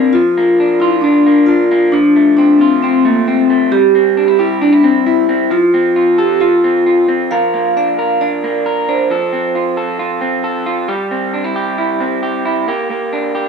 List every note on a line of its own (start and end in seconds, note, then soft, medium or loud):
0.00 0.19 A#3 medium
0.00 0.15 C4 loud
0.00 0.20 D4 medium
0.00 0.19 G4 medium
0.13 1.92 F3 medium
0.13 0.83 F4 loud
0.37 1.25 A#3 medium
0.60 1.03 D4 medium
0.80 0.91 E4 medium
0.80 1.98 F4 medium
1.01 1.49 D4 loud
1.01 1.47 D4 medium
1.27 1.70 A#3 medium
1.46 1.98 D4 medium
1.46 1.94 F4 loud
1.71 1.98 A#3 medium
1.92 3.71 F3 medium
1.92 2.36 D4 loud
2.16 3.04 A3 medium
2.37 2.83 C4 medium
2.37 2.61 D4 loud
2.59 2.81 C4 medium
2.59 3.77 F4 medium
2.83 3.04 C4 loud
2.83 3.27 C4 medium
3.05 3.49 A3 medium
3.05 3.15 A#3 medium
3.27 3.74 C4 loud
3.27 3.95 C4 medium
3.50 3.77 A3 medium
3.72 5.50 G3 medium
3.72 4.36 G4 loud
3.95 4.84 C4 medium
4.17 4.28 D4 medium
4.28 4.61 E4 soft
4.39 4.63 E4 loud
4.39 5.56 G4 medium
4.61 4.73 D4 medium
4.61 4.83 D4 loud
4.73 5.05 E4 medium
4.83 5.05 C4 medium
4.83 5.29 C4 medium
5.06 5.53 E4 loud
5.06 5.56 E4 medium
5.29 5.56 C4 medium
5.51 7.31 F3 medium
5.51 6.15 F4 loud
5.74 6.63 C4 medium
5.96 6.41 F4 medium
6.18 6.42 G4 medium
6.18 7.32 A4 medium
6.41 7.04 F4 loud
6.41 6.86 F4 medium
6.64 7.07 C4 medium
6.86 7.76 F4 medium
7.08 7.35 C4 medium
7.31 9.09 F3 medium
7.31 7.97 A#4 medium
7.31 7.76 F5 loud
7.54 8.43 A#3 medium
7.77 8.20 D4 medium
7.77 8.22 F5 loud
7.99 8.65 A#4 medium
8.21 8.87 D4 medium
8.21 8.90 D5 medium
8.44 9.15 A#3 medium
8.66 9.10 A#4 medium
8.89 9.15 D4 medium
8.89 9.74 C5 medium
9.11 10.88 F3 medium
9.11 9.76 A4 medium
9.33 10.21 C4 medium
9.55 9.98 F4 medium
9.77 10.43 A4 medium
9.99 10.65 F4 medium
10.21 10.93 C4 medium
10.44 10.88 A4 medium
10.66 10.93 F4 medium
10.88 12.68 G3 medium
10.88 11.55 G4 medium
11.11 11.99 C4 medium
11.34 11.44 D4 medium
11.44 11.77 E4 medium
11.56 12.22 G4 medium
11.78 12.44 E4 medium
12.00 12.68 C4 medium
12.23 12.67 G4 medium
12.45 12.72 E4 medium
12.68 12.90 A#3 medium
12.68 13.34 G4 medium
12.90 13.49 A#3 medium
13.13 13.49 D4 medium
13.35 13.49 G4 medium